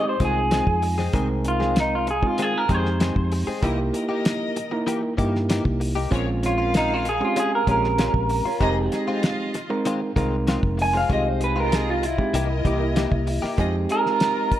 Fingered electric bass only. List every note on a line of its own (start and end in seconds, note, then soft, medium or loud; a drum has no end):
0.20 0.61 C2 medium
0.67 1.08 F2 medium
1.14 2.22 C2 medium
2.69 3.10 F2 medium
3.16 3.43 F2 medium
3.47 muted fingered electric bass stroke soft
3.63 3.90 C2 medium
5.18 5.59 G2 medium
5.65 6.06 C2 medium
6.12 7.20 A#1 loud
7.67 8.08 A#1 medium
8.14 8.41 A#1 medium
8.60 8.88 F1 medium
10.16 10.57 C2 medium
10.63 11.03 F1 medium
11.10 12.18 C2 loud
12.34 12.61 C2 loud
12.65 13.06 C2 medium
13.12 13.39 C2 medium
13.43 muted fingered electric bass stroke soft
13.58 13.85 F2 medium